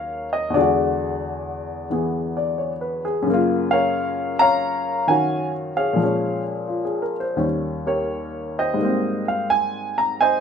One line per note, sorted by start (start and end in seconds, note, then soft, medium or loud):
0.00 0.55 D#2 soft
0.00 0.56 C#3 soft
0.00 0.57 F#3 soft
0.00 0.55 F#4 soft
0.00 0.52 A#4 medium
0.00 0.52 C#5 medium
0.00 0.29 F5 medium
0.33 0.54 D#5 medium
0.50 3.24 E2 medium
0.54 3.26 D3 soft
0.54 3.28 G#3 soft
0.54 0.60 F#4 medium
0.54 1.88 G#4 medium
0.54 1.87 D5 medium
0.62 3.30 F#4 medium
1.90 3.26 E3 soft
1.90 3.27 B3 soft
1.90 3.03 G#4 soft
2.37 2.72 D5 soft
2.58 3.01 C#5 soft
2.81 3.17 B4 soft
3.05 3.40 G#4 medium
3.22 5.97 F#2 medium
3.26 5.99 C#3 medium
3.26 6.00 A#3 medium
3.34 6.02 F4 medium
3.71 5.04 A#4 medium
3.71 4.40 C#5 medium
3.71 4.36 F5 medium
4.39 5.73 C#5 medium
4.39 5.73 F5 medium
4.39 5.09 A#5 loud
5.07 5.98 D#3 soft
5.07 5.99 C#4 soft
5.07 6.00 F#4 medium
5.07 5.50 G#5 medium
5.77 6.83 G#4 soft
5.77 7.11 C#5 medium
5.77 6.42 F5 medium
5.93 7.35 A#2 medium
5.93 7.36 F3 soft
6.00 7.38 G#3 soft
6.00 7.36 C#4 medium
6.68 7.01 F4 soft
6.85 7.15 G#4 soft
7.02 7.24 A#4 soft
7.20 7.45 C5 soft
7.36 8.79 D#2 soft
7.36 8.79 D#3 soft
7.36 8.76 G3 soft
7.36 8.80 C#4 medium
7.86 8.76 G4 soft
7.86 8.76 A#4 soft
7.86 8.60 C#5 medium
8.59 9.95 C5 medium
8.59 9.25 D#5 medium
8.59 9.95 G5 soft
8.74 10.40 G#2 medium
8.74 10.40 G3 soft
8.81 10.40 A#3 soft
8.85 10.40 C4 medium
9.28 9.49 F5 medium
9.50 10.00 G#5 medium
9.98 10.19 A#5 medium
10.21 10.40 C5 medium
10.21 10.40 D#5 medium
10.21 10.40 G#5 medium